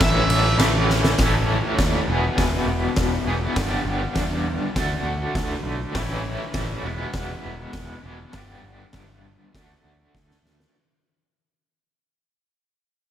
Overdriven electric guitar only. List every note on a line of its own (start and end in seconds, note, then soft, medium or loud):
0.00 1.16 A2 loud
0.00 1.17 E3 loud
0.00 1.18 A3 loud
0.00 1.18 C#4 loud
0.05 1.19 A4 loud
1.18 2.05 A2 medium
1.18 2.06 E3 loud
1.18 2.07 A3 loud
1.18 2.07 C#4 medium
1.24 2.08 A4 medium
2.06 3.23 E2 medium
2.06 3.24 B2 medium
2.06 3.25 E3 medium
2.06 3.25 B3 medium
2.10 3.25 E4 medium
2.10 3.26 G#4 medium
3.28 3.56 B2 medium
3.28 3.56 E3 medium
3.28 3.56 B3 medium
3.28 3.55 E4 medium
3.28 3.54 G#4 medium
3.32 3.56 E2 medium
3.56 4.73 G2 medium
3.56 4.73 D3 medium
3.56 4.74 G3 loud
3.56 4.75 B3 medium
3.61 4.75 D4 loud
3.61 4.76 G4 loud
4.74 5.92 D3 medium
4.74 5.93 A3 medium
4.74 5.94 D4 medium
4.79 5.94 F#4 loud
5.92 6.81 A2 medium
5.92 6.82 E3 loud
5.92 6.83 A3 loud
5.97 6.84 C#4 loud
5.97 6.84 E4 loud
6.83 8.01 E2 medium
6.83 8.02 B2 medium
6.83 8.03 E3 medium
6.83 8.03 G#3 medium
6.87 8.02 B3 medium
6.87 8.01 E4 medium
8.02 8.33 B2 medium
8.02 8.33 E3 medium
8.02 8.33 G#3 medium
8.02 8.32 B3 medium
8.02 8.31 E4 medium
8.07 8.31 E2 medium
8.32 9.51 G2 medium
8.32 9.51 D3 medium
8.32 9.52 G3 medium
8.32 9.52 B3 medium
8.32 9.53 D4 loud
8.36 9.53 G4 loud
9.53 10.72 D3 medium
9.53 10.72 A3 medium
9.53 10.73 D4 medium
9.58 10.74 F#4 loud